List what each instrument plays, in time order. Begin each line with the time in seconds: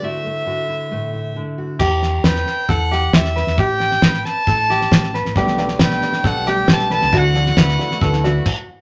Already playing: steel-string acoustic guitar D3
0.02 steel-string acoustic guitar D2 A3 E4 F#4, fiddle E5
0.26 steel-string acoustic guitar A3
0.46 steel-string acoustic guitar D3 F#4
0.68 steel-string acoustic guitar E4
0.91 steel-string acoustic guitar A2 A3
1.13 steel-string acoustic guitar E4
1.36 steel-string acoustic guitar D3
1.58 steel-string acoustic guitar F#4
1.79 fingered electric bass E2, ukulele G4, kick, snare, crash
2.03 snare
2.24 fingered electric bass E2, ukulele B4, fiddle G5, kick, snare
2.36 snare
2.47 snare
2.69 fingered electric bass E2, ukulele A4, fiddle F#5, kick, snare
2.91 ukulele G4, snare
3.13 fingered electric bass E2, fiddle E5, kick, snare
3.25 snare
3.36 ukulele B4, snare
3.47 fingered electric bass E2, snare
3.57 fingered electric bass A1, ukulele G4, fiddle G5, kick, snare
3.80 snare
3.91 snare
4.02 fingered electric bass A1, ukulele B4, kick, snare
4.13 snare
4.19 fiddle G5
4.25 fiddle A5, snare
4.47 fingered electric bass A1, ukulele A4, kick, snare
4.70 ukulele G4, snare
4.81 snare
4.91 fingered electric bass A1, kick, snare
5.03 snare
5.14 ukulele B4, snare
5.25 fingered electric bass A1, snare
5.36 fingered electric bass B1, felt piano B1 B2 G3 B3 A4 D5, steel-string acoustic guitar B2 G3 A3 D4 G4, ukulele G4, kick, snare
5.47 snare
5.57 felt piano G3 B3 A4 D5, snare
5.68 steel-string acoustic guitar D4 G4, snare
5.72 steel-string acoustic guitar A3
5.79 fingered electric bass B1, steel-string acoustic guitar B2 G3 A3 D4 G4, felt piano G3 B3 A4, ukulele B4, fiddle G5, kick, snare
5.91 snare
6.01 felt piano G3 B3 A4 D5, snare
6.13 steel-string acoustic guitar A3 D4 G4, snare
6.24 fingered electric bass B1, felt piano G3 B3 A4 D5, ukulele A4, fiddle F#5, kick, snare
6.35 steel-string acoustic guitar A3 D4 G4
6.46 steel-string acoustic guitar G3 A3 D4 G4, felt piano G3 B3 A4 D5, ukulele G4, fiddle G5, snare
6.68 fingered electric bass B1, steel-string acoustic guitar B2 G3 A3 D4 G4, felt piano G3 B3 A4 B4, kick, snare
6.73 fiddle A5
6.79 snare
6.90 steel-string acoustic guitar G3 A3 D4 G4, felt piano G3 B3 A4 D5, ukulele B4, snare
6.94 fiddle A5
7.00 fingered electric bass C#2, steel-string acoustic guitar A3 D4 G4, snare
7.11 felt piano D2 D3 F#3 E4 A4 D5, fingered electric bass D2, steel-string acoustic guitar D3 A3 E4 F#4, ukulele F#4, kick, snare
7.17 fiddle F#5
7.34 felt piano F#3 E4 A4 D5, snare
7.46 steel-string acoustic guitar A3 E4 F#4, snare
7.57 fingered electric bass D2, steel-string acoustic guitar D3 A3 E4 F#4, felt piano F#3 E4 A4 D5, ukulele B4, kick, snare
7.68 snare
7.79 felt piano F#3 E4 A4 D5, snare
7.91 steel-string acoustic guitar A3 E4 F#4, snare
8.01 fingered electric bass D2, felt piano F#3 E4 A4 B4, ukulele A4, kick, snare
8.12 steel-string acoustic guitar A3 E4 F#4, snare
8.23 steel-string acoustic guitar D3 A3 E4 F#4, felt piano F#3 E4 A4 D5, ukulele F#4, snare
8.46 kick, crash